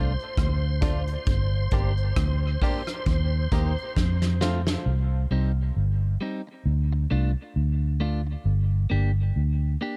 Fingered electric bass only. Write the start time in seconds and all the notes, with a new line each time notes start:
Already playing: C2
0.38 D2
1.27 G1
1.72 G1
2.17 D2
3.07 D#2
3.52 D#2
3.97 F2
4.86 C2
5.31 C2
5.76 G1
6.66 D2
7.11 C2
7.56 D2
8.45 G1
8.91 G1
9.36 D2